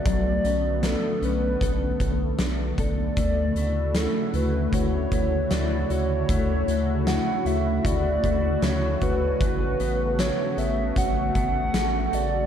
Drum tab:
HH |xxxxxxxx|xxxxxxxx|xxxxxxxx|xxxxxxxx|
SD |--o---o-|--o---o-|--o---o-|--o---o-|
BD |o---oo-o|o---oo--|o---oo-o|o---oo--|